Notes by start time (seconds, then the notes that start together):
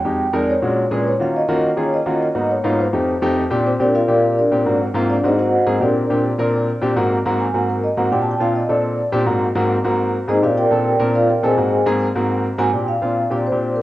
Already playing: G5
0.04 F2 G#3 D#4 G4
0.33 F2 G#3 D#4 A#4 D5
0.50 C#5
0.62 A#2 G#3 C#4 D4 F#4
0.91 A#2 G#3 C#4 D4 G#4 B4
1.07 C#5
1.20 D#3 A#3 C#4 F4 F#4 F5
1.36 D#5
1.48 D#3 A#3 C#4 F4 F#4
1.77 D#3 A#3 C#4 F4 G#4 C#5
1.94 D#5
2.06 D#3 A#3 C#4 F4 F#4
2.22 D#5
2.35 G#2 A#3 B3 D#4 F#4
2.51 C#5
2.64 G#2 A#3 B3 D#4 F4
2.80 C5
2.93 F2 A3 D#4 G4
3.22 F2 A3 D#4 G4
3.50 A#2 C4 D4 G4
3.67 C4 C5
3.79 A#2 C4 D4 G4 A#4 D5
3.95 F4 A#4 D5 F5
4.08 A#2 C4 D4 G4
4.39 D4 G4 A#4 D5
4.51 A#2 C4 D4 G4
4.65 G#2 A#3 C4 F#4
4.94 G#2 A#3 C4 F4
5.10 D4 D5
5.23 G#2 A#3 C4 D#4 F#4 G#4 C5 D#5
5.39 F#4 C5 D#5 F#5
5.66 G#2 A#3 C4 G#4
5.80 A#2 C4 D4 G4 A#4 D5
6.10 A#2 C4 D4 G4
6.38 A#2 C4 D4 A#4
6.82 A#2 C4 D4 G4
6.96 G#2 A#3 C4 F#4
7.25 G#2 A#3 C4 F#4
7.41 G#5
7.54 G#2 A#3 C4 F#4 F#5
7.69 A#4
7.84 D#5
7.97 G#2 A#3 C4 F#4 F#5
8.11 A#2 C4 D4 G4 G5
8.22 A5
8.31 G5
8.40 A#2 C4 D4 F4 F5
8.56 D#5
8.69 A#2 C4 D4 A4 D5
9.12 A#2 C4 D4 G4
9.26 G#2 A#3 C4 F#4
9.55 G#2 A#3 C4 F#4
9.84 G#2 A#3 C4 F#4
10.28 G#2 A#3 C4 D#4 G#4 C5 D#5
10.42 A#2 C4 D4 F4 G4 A#4 D5 F5
10.57 G4 A#4 D5 G5
10.71 A#2 C4 D4 A4
10.99 A#2 C4 D4 A#4
11.15 F4 A#4 D5 F5
11.30 G4 A#4 D5 G5
11.43 A#2 C4 D4 G#4 A4 C5 D#5 G#5
11.57 G#2 A#3 C4 F#4
11.86 G#2 A#3 C4 G#4
12.15 G#2 A#3 C4 F#4
12.58 G#2 A#3 C4 F#4 G#5
12.73 A#2 C4 D4 G4 G5
12.88 F5
13.02 A#2 C4 D4 F4
13.30 A#2 C4 D4 G4 D5
13.47 C5
13.52 A#2 C4 D4 G4
13.76 A#4